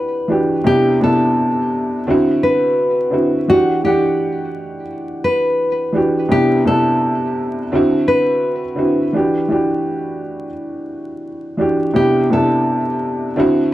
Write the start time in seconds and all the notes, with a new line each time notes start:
Already playing: E3 D4 G4 B4 F#5
0.28 E3 D4 F#4 G4
0.64 C3 B3 D4 E4 G4
1.01 C3 B3 D4 E4 A4
2.07 D3 C4 E4 F#4
2.43 B4
3.10 D3 C4 E4 F#4
3.48 E3 D4 F#4 G4
3.84 E3 D4 G4 F#5
5.24 B4
5.92 E3 D4 F#4 G4
6.29 C3 B3 D4 E4 G4
6.65 C3 B3 D4 E4 A4
7.72 D3 C4 E4 F#4
8.08 B4
8.75 D3 C4 E4 F#4
9.13 E3 D4 F#4 G4
9.48 E3 D4 F#4 G4
11.57 E3 D4 F#4 G4
11.94 C3 B3 D4 E4 G4
12.30 C3 B3 D4 E4 A4
13.36 D3 C4 E4 F#4